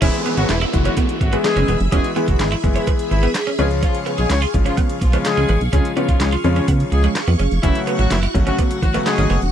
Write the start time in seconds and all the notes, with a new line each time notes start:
0.02 E1 E3 G#3 B3 C#4 E4 G#4 E5 B5, kick, closed hi-hat, crash, downlifter
0.14 closed hi-hat
0.26 B3, closed hi-hat
0.37 G#1 F#3 F#4, muted clean electric guitar stroke, closed hi-hat
0.49 E1 E3 E4, snare, clap, closed hi-hat
0.61 E4, closed hi-hat
0.73 F#1 E3 G#3 B3 E4 F#4, muted clean electric guitar stroke, kick, closed hi-hat
0.85 F#3 C#4 F#4, closed hi-hat
0.97 B3, kick, closed hi-hat
1.09 closed hi-hat
1.21 G#1 F#3 F#4, muted clean electric guitar stroke, kick, closed hi-hat
1.33 E3 G#3 B3 E4 G#4, closed hi-hat
1.44 G#3 G#4, muted clean electric guitar stroke, snare, clap, closed hi-hat
1.56 F#1 C#4, closed hi-hat
1.68 E1 B3, closed hi-hat
1.80 F#1, closed hi-hat
1.92 E1 E3 G#3 B3 C#4 E4 F#4 G#4, kick, closed hi-hat
2.04 closed hi-hat
2.16 E3 G#3 B3 E4 G#4, closed hi-hat
2.28 F#1 F#3 F#4, muted clean electric guitar stroke, kick, closed hi-hat
2.39 G#1 G#3 G#4, snare, clap, closed hi-hat
2.52 E4, closed hi-hat
2.63 F#1 E3 G#3 B3 E4 G#4, muted clean electric guitar stroke, kick, closed hi-hat
2.76 E3 C#4 E4, closed hi-hat
2.87 B3, kick, closed hi-hat
2.99 closed hi-hat
3.11 G#1 E3 E4, muted clean electric guitar stroke, closed hi-hat
3.23 B3, closed hi-hat
3.34 muted clean electric guitar stroke, snare, clap, closed hi-hat
3.47 C#4, closed hi-hat
3.59 C#2 C#3 F3 G#3 B3 C#4 F4 G#4 F5 C#6, closed hi-hat
3.71 closed hi-hat
3.82 F3 C#4 F4, kick, closed hi-hat
3.95 closed hi-hat
4.06 B3, closed hi-hat
4.18 B1 G#3 G#4, muted clean electric guitar stroke, closed hi-hat
4.30 C#2 C#4 C#5, snare, clap, closed hi-hat
4.42 F4, closed hi-hat
4.54 G#1 C#3 F3 G#3 C#4 F4, muted clean electric guitar stroke, kick, closed hi-hat
4.66 F3 C#4 F4, closed hi-hat
4.77 B3, kick, closed hi-hat
4.90 closed hi-hat
5.01 B1 F3 F4, muted clean electric guitar stroke, kick, closed hi-hat
5.13 C#3 F3 G#3 B3 C#4 F4, closed hi-hat
5.25 G#3 G#4, muted clean electric guitar stroke, snare, clap, closed hi-hat
5.37 C#2 C#4, closed hi-hat
5.49 A1 B3, closed hi-hat
5.61 B1, closed hi-hat
5.73 C#2 C#3 F3 G#3 C#4 F4 G#4, kick, closed hi-hat
5.85 closed hi-hat
5.96 C#3 F3 G#3 B3 C#4 F4, closed hi-hat
6.08 B1 F3 F4, muted clean electric guitar stroke, kick, closed hi-hat
6.20 C#2 G#3 G#4, snare, clap, closed hi-hat
6.32 F4, closed hi-hat
6.44 F2 C#3 F3 G#3 C#4 F4, muted clean electric guitar stroke, closed hi-hat
6.56 C#4 C#5, closed hi-hat
6.68 C#3 B3, kick, closed hi-hat
6.80 closed hi-hat
6.92 C#2 G#3 G#4, muted clean electric guitar stroke, closed hi-hat
7.04 G#3, closed hi-hat
7.15 muted clean electric guitar stroke, snare, clap, closed hi-hat
7.28 F2 B3, closed hi-hat
7.39 F#1 C#4, closed hi-hat
7.51 F1, closed hi-hat
7.63 F#1 C#3 E3 F#3 A3 C#4 E4 F#4 F#5, kick, closed hi-hat
7.75 closed hi-hat
7.87 B3, closed hi-hat
7.99 A1 F#3 F#4, muted clean electric guitar stroke, closed hi-hat
8.11 F#1 E3 E4, snare, clap, closed hi-hat
8.23 E4, closed hi-hat
8.34 G#1 C#3 F#3 A3 C#4 F#4, muted clean electric guitar stroke, kick, closed hi-hat
8.47 F#3 C#4 F#4, closed hi-hat
8.59 B3, kick, closed hi-hat
8.71 closed hi-hat
8.82 A1 F#3 F#4, muted clean electric guitar stroke, kick, closed hi-hat
8.94 C#3 F#3 A3 B3 C#4 F#4, closed hi-hat
9.06 G#3 G#4, muted clean electric guitar stroke, snare, clap, closed hi-hat
9.18 G#1 C#4, closed hi-hat
9.30 F#1 B3, closed hi-hat
9.42 E1, closed hi-hat